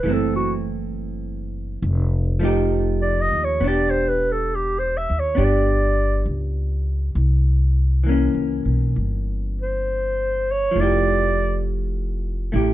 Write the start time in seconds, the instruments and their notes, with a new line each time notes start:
Already playing: clarinet B4
0.03 upright bass F#1, hollow-body jazz guitar E3 A3
0.09 hollow-body jazz guitar C4
0.13 clarinet A4
0.36 clarinet F#4
1.82 upright bass F1
2.39 hollow-body jazz guitar F3 A3 D#4
2.45 hollow-body jazz guitar G4
3.02 clarinet D5
3.21 clarinet D#5
3.31 upright bass D#2
3.44 clarinet C#5
3.60 upright bass E1, hollow-body jazz guitar B3 D4
3.67 hollow-body jazz guitar G4, clarinet D5
3.91 clarinet C5
4.09 clarinet B4
4.32 clarinet A4
4.55 clarinet G4
4.79 clarinet C5
4.97 clarinet E5
5.10 upright bass D#2
5.19 clarinet C#5
5.35 upright bass G1, hollow-body jazz guitar B3 D4 G4
5.44 clarinet D5
6.25 upright bass C#2
7.15 upright bass C2
8.04 hollow-body jazz guitar E3 A#3
8.09 hollow-body jazz guitar C#4
8.34 upright bass C#2
8.65 upright bass B1
8.96 upright bass G1
9.61 clarinet C5
10.51 clarinet C#5
10.71 hollow-body jazz guitar F3
10.76 upright bass F1, hollow-body jazz guitar A3
10.80 hollow-body jazz guitar E4 G4, clarinet D5
12.52 upright bass A1, hollow-body jazz guitar A3 E4 G4